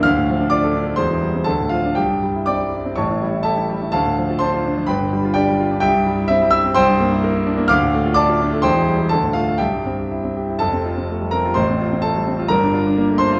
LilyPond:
<<
  \new Staff \with { instrumentName = "Grand piano" } { \time 2/4 \key c \mixolydian \tempo 4 = 127 <f'' f'''>4 <d'' d'''>4 | <c'' c'''>4 <a' a''>8 <f' f''>8 | <g' g''>4 <d'' g'' d'''>4 | <cis'' a'' cis'''>4 <a' e'' a''>4 |
<a' f'' a''>4 <c'' a'' c'''>4 | <b' g'' b''>4 <g' d'' g''>4 | <g' e'' g''>4 <e' e''>8 <e'' e'''>8 | <c'' g'' c'''>2 |
<f'' d''' f'''>4 <d'' a'' d'''>4 | <c'' g'' c'''>4 <a' a''>8 <f' f''>8 | <g' e'' g''>4. r8 | <a' a''>4. <bes' bes''>8 |
<c'' c'''>4 <a' a''>4 | <bes' bes''>4. <c'' c'''>8 | }
  \new Staff \with { instrumentName = "Grand piano" } { \time 2/4 \key c \mixolydian d,16 a,16 f16 d'16 f'16 a'16 d'16 a16 | <e,, e,>16 e16 g16 c'16 d,16 a,16 f16 d'16 | c,16 g,16 g16 e'16 c'16 g16 e'16 c'16 | <a,, a,>16 e16 g16 e'16 g'16 e'16 g16 e'16 |
d,16 a,16 f16 f'16 d'16 f'16 d'16 f16 | <g,, g,>16 d16 g16 f'16 d'16 g16 f'16 d'16 | c,16 g,16 g16 e'16 c'16 g16 e'16 c'16 | c,16 g,16 bes16 e'16 bes'16 e'16 d'16 bes16 |
d,16 a,16 a16 f'16 a'16 f'16 d'16 a16 | <e,, e,>16 e16 g16 g'16 d,16 a,16 a16 f'16 | c,16 g,16 c'16 g'16 e'16 c'16 g'16 e'16 | <f,, f,>16 c'16 f'16 c'16 a16 g16 c'16 f'16 |
<a,, a,>16 c'16 f'16 c'16 a16 g16 c'16 f'16 | <g,, g,>16 d'16 f'16 d'16 bes16 a16 d'16 f'16 | }
>>